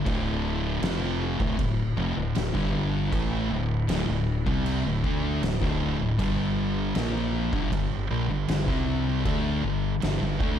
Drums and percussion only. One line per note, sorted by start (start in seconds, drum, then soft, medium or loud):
0.06 kick loud
0.06 crash medium
0.83 snare loud
0.83 crash medium
1.40 kick loud
1.59 kick loud
1.59 crash medium
2.35 snare loud
2.35 crash medium
2.55 kick loud
2.55 snare soft
3.12 kick loud
3.12 crash medium
3.89 snare loud
3.89 crash medium
4.47 kick loud
4.66 crash medium
5.04 kick loud
5.43 snare loud
5.43 crash medium
5.62 kick loud
5.62 snare soft
6.19 kick loud
6.19 crash medium
6.95 snare loud
6.95 crash medium
7.53 kick loud
7.72 kick medium
7.72 crash medium
8.48 snare loud
8.48 crash medium
8.68 kick loud
8.68 snare soft
9.25 kick loud
9.25 crash medium
10.02 snare loud
10.02 crash medium
10.40 kick loud